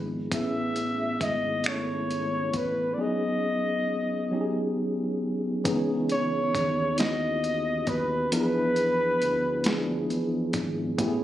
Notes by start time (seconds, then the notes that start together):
Already playing: G#1 F3 B3 D4 E4 G#4
0.31 A1 A3 B3 C#4 E4 G#4 E5, kick, closed hi-hat
0.76 closed hi-hat
1.21 G#1 D#5, kick, closed hi-hat
1.64 A3 B3 C#4 E4 A4, finger snap, closed hi-hat
1.68 C#5
2.11 closed hi-hat
2.53 A1 B4, kick, closed hi-hat
2.94 F#3 D5
2.98 B3 C#4 D#4 G#4 D#5
4.31 F#3 B3 C#4 D#4 G4
4.41 G#4
5.64 C#2 E3 B3 C#4 D#4 G#4, kick, closed hi-hat
6.09 C#5, closed hi-hat
6.55 D#2, kick, closed hi-hat
6.98 B3 C#4 D#4 E4 F#4 D#5, snare, closed hi-hat
7.44 closed hi-hat
7.87 D#2 B4, kick, closed hi-hat
8.31 E2 F3 B3 D4 E4 F4 B4, closed hi-hat
8.41 G#4
8.76 closed hi-hat
9.22 D2, closed hi-hat
9.64 F3 B3 D4 E4 G#4, snare, closed hi-hat
10.10 E2, closed hi-hat
10.53 G#1, kick, closed hi-hat
10.98 A1 A3 B3 C#4 E4 G4, kick, closed hi-hat
11.08 G#4